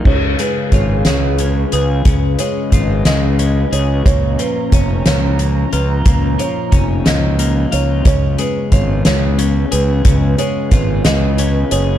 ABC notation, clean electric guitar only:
X:1
M:6/8
L:1/8
Q:3/8=60
K:Dbmix
V:1 name="Clean electric guitar" clef=bass
D, A, F A, D A | D, A, F A, D A | B,, F, D F,2 F | B,, F, D F, B, F |
D, A, F A, D A | D, A, F A, D A |]